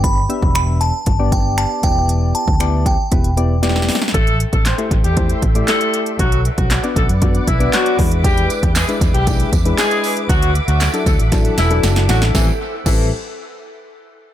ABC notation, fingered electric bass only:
X:1
M:4/4
L:1/16
Q:1/4=117
K:Ador
V:1 name="Fingered electric bass" clef=bass
G,,,3 E,,,4- E,,, G,,,6 E,,,2- | E,,,3 D,,4- D,, E,,,8 | A,,,3 A,,,2 z A,,, E,,3 A,,,2 z4 | B,,,3 B,,,2 z B,,, F,,3 B,,,2 z2 E,,2- |
E,,3 E,,2 z E,, B,,,3 E,,2 z4 | D,,3 D,,2 z D,, A,,,3 E,,,2 F,,,2 A,,,2 | A,,, z3 A,,,2 z8 z2 |]